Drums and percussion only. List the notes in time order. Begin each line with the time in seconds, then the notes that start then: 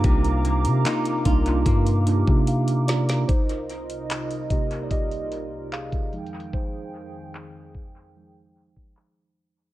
0.04 kick, closed hi-hat
0.24 closed hi-hat
0.45 closed hi-hat
0.65 closed hi-hat
0.85 clap, closed hi-hat
1.05 closed hi-hat
1.25 kick, closed hi-hat
1.46 closed hi-hat
1.66 kick, closed hi-hat
1.86 closed hi-hat
2.07 closed hi-hat
2.27 kick
2.47 closed hi-hat
2.68 closed hi-hat
2.88 snare, closed hi-hat, open hi-hat
3.09 snare, closed hi-hat
3.29 kick, closed hi-hat
3.49 closed hi-hat
3.69 closed hi-hat
3.90 closed hi-hat
4.10 clap, closed hi-hat
4.31 closed hi-hat
4.50 kick, closed hi-hat
4.71 closed hi-hat
4.91 kick, closed hi-hat
5.11 closed hi-hat
5.32 closed hi-hat
5.72 clap, closed hi-hat
5.92 kick, closed hi-hat
6.13 closed hi-hat
6.26 closed hi-hat
6.40 closed hi-hat
6.53 kick
7.35 clap
7.75 kick
8.76 kick
8.97 clap